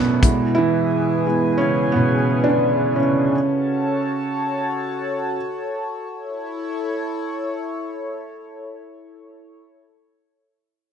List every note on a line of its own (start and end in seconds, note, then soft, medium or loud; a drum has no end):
0.00 0.25 F#2 medium
0.00 0.54 B2 medium
0.00 0.24 F#3 medium
0.00 0.22 B3 medium
0.00 0.24 D4 soft
0.00 0.24 E4 soft
0.00 3.29 E4 medium
0.00 0.19 A4 medium
0.00 0.21 D5 medium
0.00 0.21 F#5 medium
0.23 1.25 G#3 soft
0.23 1.25 B3 soft
0.23 0.53 E4 soft
0.23 3.30 G#4 medium
0.23 3.30 B4 medium
0.23 3.30 G#5 medium
0.23 kick medium
0.23 closed hi-hat medium
0.55 1.57 E3 medium
0.55 1.26 E4 medium
1.26 1.57 G#3 soft
1.26 1.57 B3 soft
1.26 1.58 E4 soft
1.58 1.93 C#3 medium
1.58 1.91 C#4 medium
1.92 2.43 B2 medium
1.92 2.47 B3 medium
2.44 2.95 D3 medium
2.44 2.99 D4 medium
2.96 5.37 C#3 medium
2.96 5.35 C#4 medium
3.33 6.07 F#4 medium
3.33 6.07 A4 medium
3.33 6.07 C#5 medium
3.33 6.07 A5 medium
6.09 9.61 E4 medium
6.09 9.61 A4 medium
6.09 9.61 C#5 medium